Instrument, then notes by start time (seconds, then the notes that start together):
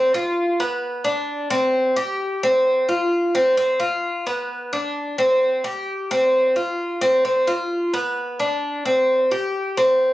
cuban tres
Already playing: C4
0.14 F4
0.60 B3
1.04 D4
1.50 C4
1.96 G4
2.43 C4
2.89 F4
3.35 C4
3.57 C4
3.80 F4
4.27 B3
4.73 D4
5.18 C4
5.64 G4
6.11 C4
6.56 F4
7.01 C4
7.25 C4
7.47 F4
7.94 B3
8.40 D4
8.85 C4
9.31 G4
9.77 C4